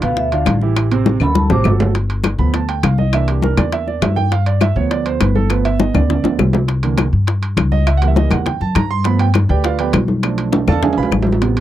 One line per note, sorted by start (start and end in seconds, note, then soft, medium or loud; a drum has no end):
0.02 0.43 D2 loud
0.02 0.27 B2 medium
0.02 0.27 B3 medium
0.02 0.27 B4 medium
0.02 0.17 F5 loud
0.02 high bongo soft
0.02 high conga soft
0.02 high timbale medium
0.17 0.32 E5 medium
0.17 high bongo medium
0.17 high conga soft
0.32 0.57 D3 medium
0.32 0.57 D4 medium
0.32 0.57 F4 medium
0.32 0.47 F5 loud
0.32 high conga soft
0.32 high timbale medium
0.46 1.15 A1 medium
0.46 high bongo medium
0.46 low bongo medium
0.46 high conga medium
0.46 high timbale loud
0.46 claves medium
0.61 0.86 E3 medium
0.61 0.86 E4 medium
0.61 0.87 G4 medium
0.61 high bongo soft
0.76 high bongo medium
0.76 high conga soft
0.76 high timbale medium
0.76 claves medium
0.91 1.16 C3 medium
0.91 1.16 C4 medium
0.91 1.16 C5 medium
0.91 high bongo soft
0.91 high conga soft
0.91 high timbale medium
1.06 high bongo medium
1.06 high conga medium
1.20 1.48 D2 loud
1.20 1.45 F#3 medium
1.20 1.45 F#4 medium
1.20 1.45 A4 medium
1.20 1.36 B5 loud
1.20 high conga soft
1.20 low conga medium
1.20 high timbale medium
1.20 claves medium
1.35 1.51 A5 medium
1.35 high bongo medium
1.35 high conga loud
1.50 1.64 A1 medium
1.50 1.63 C3 medium
1.50 1.63 C4 medium
1.50 1.63 C5 medium
1.50 1.60 D6 loud
1.50 low bongo loud
1.50 low timbale medium
1.64 2.34 G1 medium
1.64 1.90 F#3 medium
1.64 1.90 F#4 medium
1.64 1.90 A4 medium
1.64 low bongo medium
1.64 low timbale loud
1.64 claves medium
1.80 low bongo medium
1.80 low conga medium
1.80 low timbale loud
1.95 high bongo medium
1.95 high conga soft
1.95 high timbale medium
2.10 high conga soft
2.10 high timbale medium
2.24 high bongo medium
2.24 high conga loud
2.24 high timbale medium
2.24 claves medium
2.38 2.80 D2 loud
2.38 2.59 F3 medium
2.38 2.59 A3 soft
2.38 2.59 B3 medium
2.38 2.54 B5 medium
2.53 2.69 A5 medium
2.53 high bongo medium
2.53 high conga soft
2.53 high timbale medium
2.68 2.83 G5 medium
2.68 high conga soft
2.68 high timbale medium
2.83 3.52 C2 medium
2.83 2.98 F5 medium
2.83 high bongo medium
2.83 low bongo medium
2.83 high conga medium
2.83 high timbale loud
2.83 claves medium
2.98 3.13 D#5 medium
2.98 high conga medium
3.13 4.28 E3 medium
3.13 4.28 A#3 medium
3.13 4.28 D4 medium
3.13 3.28 E5 medium
3.13 high bongo medium
3.13 high conga soft
3.13 high timbale medium
3.13 claves medium
3.28 3.43 G4 medium
3.28 high bongo soft
3.28 high conga soft
3.28 high timbale medium
3.42 3.58 A#4 medium
3.42 high bongo medium
3.42 high conga medium
3.57 3.99 E2 medium
3.57 3.72 D5 medium
3.57 high bongo soft
3.57 high conga medium
3.57 low conga medium
3.57 high timbale medium
3.57 claves medium
3.72 3.87 E5 medium
3.72 high bongo medium
3.72 high conga soft
3.72 high timbale medium
3.87 4.02 D5 medium
3.87 high bongo soft
3.87 high conga soft
4.01 4.70 G2 medium
4.01 4.17 E5 medium
4.01 high bongo medium
4.01 low bongo medium
4.01 high conga medium
4.01 high timbale loud
4.01 low timbale medium
4.01 claves medium
4.16 4.31 G5 loud
4.16 high conga medium
4.32 4.46 F5 medium
4.32 high bongo medium
4.32 high conga soft
4.32 high timbale medium
4.46 4.61 D5 medium
4.46 high conga soft
4.46 high timbale medium
4.61 4.76 E5 loud
4.61 high bongo medium
4.61 high conga medium
4.61 high timbale medium
4.61 claves medium
4.76 5.17 D2 medium
4.76 5.48 F3 medium
4.76 5.49 A3 soft
4.76 5.49 B3 medium
4.76 4.91 C#5 medium
4.91 5.05 D5 medium
4.91 high bongo medium
4.91 high conga soft
4.91 high timbale medium
5.06 5.20 C5 medium
5.06 high conga soft
5.06 high timbale medium
5.20 5.89 G1 medium
5.20 5.35 B4 medium
5.20 high bongo medium
5.20 low bongo medium
5.20 high conga medium
5.20 high timbale loud
5.20 claves medium
5.35 5.50 A4 medium
5.35 high conga medium
5.50 5.63 F3 medium
5.50 5.64 A3 medium
5.50 6.24 B3 medium
5.50 5.65 B4 medium
5.50 high bongo medium
5.50 high timbale medium
5.50 claves medium
5.65 5.79 E5 loud
5.65 high bongo soft
5.65 high conga soft
5.65 high timbale medium
5.80 5.95 D#5 medium
5.80 high bongo medium
5.80 high conga loud
5.94 6.22 D2 medium
5.94 6.36 D5 medium
5.94 high bongo soft
5.94 high conga loud
5.94 low conga medium
5.94 high timbale medium
5.94 claves medium
6.10 high bongo medium
6.10 high conga soft
6.10 low conga medium
6.10 high timbale medium
6.24 6.38 D2 medium
6.24 6.38 F3 soft
6.24 6.38 A3 soft
6.24 6.38 B3 medium
6.24 high bongo medium
6.24 high timbale medium
6.39 7.07 C2 medium
6.39 low bongo medium
6.39 high conga medium
6.39 low timbale medium
6.39 claves medium
6.53 low bongo medium
6.53 low timbale medium
6.68 high bongo medium
6.68 high conga soft
6.68 high timbale medium
6.83 7.03 D3 medium
6.83 7.03 E3 soft
6.83 7.03 A#3 medium
6.83 high conga soft
6.83 high timbale medium
6.98 high bongo medium
6.98 high conga medium
6.98 high timbale medium
6.98 claves medium
7.13 7.54 G2 medium
7.27 high bongo medium
7.27 high conga soft
7.27 high timbale medium
7.42 high conga soft
7.42 high timbale medium
7.57 8.25 C#2 medium
7.57 high bongo medium
7.57 low bongo medium
7.57 high conga medium
7.57 high timbale loud
7.57 claves medium
7.72 7.86 D#5 medium
7.72 high conga medium
7.87 7.97 E5 medium
7.87 high bongo medium
7.87 high timbale medium
7.87 claves medium
7.97 8.07 F#5 loud
7.97 high conga soft
8.02 8.44 E3 medium
8.02 8.44 G3 medium
8.02 8.44 A#3 medium
8.02 high bongo soft
8.02 high timbale medium
8.08 8.17 E5 medium
8.16 8.31 D#5 medium
8.16 high bongo medium
8.16 high conga medium
8.31 8.59 E2 loud
8.31 8.46 F#5 medium
8.31 high bongo soft
8.31 high conga loud
8.31 low conga medium
8.31 high timbale medium
8.31 claves medium
8.46 8.61 G5 medium
8.46 high bongo medium
8.46 high conga soft
8.46 low conga medium
8.46 high timbale medium
8.60 8.74 F#2 medium
8.60 8.75 A5 medium
8.60 high bongo soft
8.60 high conga soft
8.75 9.44 G2 loud
8.75 8.90 A#5 medium
8.75 high bongo medium
8.75 low bongo medium
8.75 high conga medium
8.75 high timbale loud
8.75 claves medium
8.91 9.05 C6 loud
9.04 9.25 F3 medium
9.04 9.25 A3 medium
9.04 9.25 B3 medium
9.04 9.20 B5 medium
9.04 high bongo medium
9.04 high conga soft
9.04 high timbale medium
9.19 9.29 G5 loud
9.19 high conga soft
9.19 high timbale medium
9.34 high bongo medium
9.34 high conga medium
9.34 high timbale medium
9.34 claves medium
9.49 9.91 D2 loud
9.49 9.64 G4 medium
9.49 9.64 B4 medium
9.49 9.64 D5 medium
9.49 9.64 G5 medium
9.64 9.79 F4 medium
9.64 9.78 B4 medium
9.64 9.79 D5 medium
9.64 9.79 F5 medium
9.64 high bongo medium
9.64 high conga soft
9.64 high timbale medium
9.79 9.92 F3 soft
9.79 9.93 A3 soft
9.79 9.93 B3 medium
9.79 9.94 G4 medium
9.79 9.94 B4 medium
9.79 9.94 D5 medium
9.79 9.94 G5 medium
9.79 high conga soft
9.79 high timbale medium
9.93 10.62 B1 medium
9.93 high bongo medium
9.93 low bongo medium
9.93 high conga medium
9.93 high timbale loud
9.93 low timbale medium
9.93 claves medium
10.08 high conga medium
10.23 10.65 F3 medium
10.23 10.66 A3 medium
10.23 10.66 D4 medium
10.23 high bongo medium
10.23 high conga soft
10.23 high timbale medium
10.23 claves medium
10.38 high bongo soft
10.38 high conga soft
10.38 high timbale medium
10.53 high bongo medium
10.53 high conga loud
10.53 high timbale loud
10.67 10.95 E2 loud
10.67 10.82 A4 medium
10.67 10.82 D5 medium
10.67 10.82 F5 medium
10.67 10.82 A5 loud
10.67 high bongo soft
10.67 high conga loud
10.67 low conga medium
10.67 claves medium
10.72 high timbale medium
10.82 11.24 F3 medium
10.82 11.25 G#3 medium
10.82 11.25 D4 medium
10.82 10.97 G#4 medium
10.82 10.97 E5 medium
10.82 10.97 F5 medium
10.82 10.97 G#5 medium
10.82 high bongo medium
10.82 high conga soft
10.82 low conga medium
10.82 high timbale medium
10.93 high timbale medium
10.97 11.11 B1 medium
10.97 11.12 B4 medium
10.97 11.12 F5 medium
10.97 11.12 G#5 medium
10.97 11.12 B5 loud
10.97 high bongo soft
10.97 high conga soft
11.03 low timbale medium
11.11 11.60 A1 medium
11.11 high bongo medium
11.11 low bongo medium
11.11 high conga medium
11.11 claves medium
11.23 low timbale medium
11.27 high conga medium
11.32 low timbale medium
11.41 11.60 C3 medium
11.41 11.60 G3 soft
11.41 11.60 B3 medium
11.41 high bongo medium
11.41 high conga soft
11.41 high timbale medium
11.56 high conga soft
11.56 high timbale medium